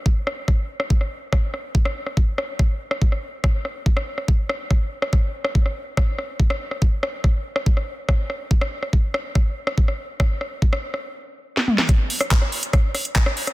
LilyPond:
\new DrumStaff \with { instrumentName = "Drums" } \drummode { \time 4/4 \tempo 4 = 142 bd8 ss8 <bd ss>8. ss16 bd16 ss8. <bd ss>8 ss8 | bd16 ss8 ss16 bd8 ss8 <bd ss>8. ss16 bd16 ss8. | <bd ss>8 ss8 bd16 ss8 ss16 bd8 ss8 <bd ss>8. ss16 | <bd ss>8. ss16 bd16 ss8. <bd ss>8 ss8 bd16 ss8 ss16 |
bd8 ss8 <bd ss>8. ss16 bd16 ss8. <bd ss>8 ss8 | bd16 ss8 ss16 bd8 ss8 <bd ss>8. ss16 bd16 ss8. | <bd ss>8 ss8 bd16 ss8 ss16 r4 r16 sn16 toml16 sn16 | <hh bd ss>8 hho16 <hh ss>16 <hc hh bd>16 ss16 hho16 hh16 <hh bd ss>8 <hho ss>16 hh16 <hc hh bd>16 ss16 hho16 <hh ss>16 | }